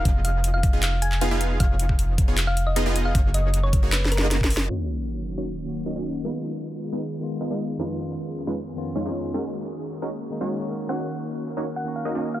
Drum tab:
HH |x-----x-----x-----x-----x-----x-----x-----x-----|x-----x-----x-----x-----x-----x-----x-----x-----|x-----x-----x-----x-----x-----x-----x-----o-----|------------------------------------------------|
CP |------------------------x--------x--------------|------------------------x-----------------------|------------------------x-----------------------|------------------------------------------------|
SD |------------------------------------------------|------------------------------------------------|------------------------o---o---o---o---o---o---|------------------------------------------------|
BD |o-----------------o-----------------------------|o--------o--------o-----------------------------|o-----------------o--------------------o--------|------------------------------------------------|

HH |------------------------------------------------|------------------------------------------------|------------------------------------------------|------------------------------------------------|
CP |------------------------------------------------|------------------------------------------------|------------------------------------------------|------------------------------------------------|
SD |------------------------------------------------|------------------------------------------------|------------------------------------------------|------------------------------------------------|
BD |------------------------------------------------|------------------------------------------------|------------------------------------------------|------------------------------------------------|